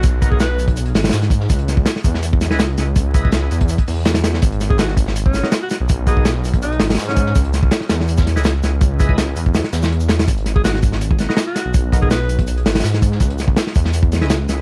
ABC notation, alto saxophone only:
X:1
M:4/4
L:1/16
Q:1/4=164
K:G#m
V:1 name="Alto saxophone"
z3 G B3 z8 z | z16 | z16 | z3 G F F z3 C2 z2 F F z |
z2 G2 z4 D2 z3 C3 | z16 | z16 | z3 G F F z6 z F3 |
z3 G B3 z8 z | z16 |]